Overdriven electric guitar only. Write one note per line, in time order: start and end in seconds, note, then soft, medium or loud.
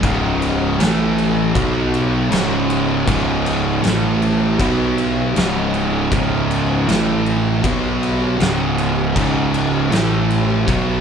0.02 0.78 C#2 medium
0.02 0.78 G#2 loud
0.02 0.78 C#3 loud
0.79 1.53 A2 loud
0.79 1.54 E3 loud
0.79 1.55 A3 loud
1.54 2.29 B2 medium
1.54 2.30 F#3 loud
1.54 2.30 B3 loud
2.30 3.05 C#2 loud
2.30 3.06 G#2 loud
2.30 3.06 C#3 loud
3.06 3.82 C#2 loud
3.06 3.82 G#2 loud
3.06 3.83 C#3 loud
3.83 4.58 A2 loud
3.83 4.58 E3 loud
3.83 4.59 A3 loud
4.59 5.34 B2 loud
4.59 5.34 F#3 loud
4.59 5.35 B3 loud
5.35 6.10 C#2 medium
5.35 6.11 G#2 medium
5.35 6.11 C#3 loud
6.11 6.86 C#2 loud
6.11 6.87 G#2 loud
6.11 6.87 C#3 loud
6.87 7.64 A2 loud
6.87 7.64 E3 loud
6.87 7.65 A3 loud
7.64 8.38 B2 loud
7.64 8.39 F#3 loud
7.64 8.39 B3 loud
8.39 9.14 C#2 loud
8.39 9.14 G#2 loud
8.39 9.15 C#3 loud
9.15 9.90 C#2 loud
9.15 9.90 G#2 loud
9.15 9.90 C#3 loud
9.90 10.66 A2 loud
9.90 10.66 E3 medium
9.90 10.66 A3 loud
10.67 11.01 B2 loud
10.67 11.01 F#3 medium
10.67 11.01 B3 loud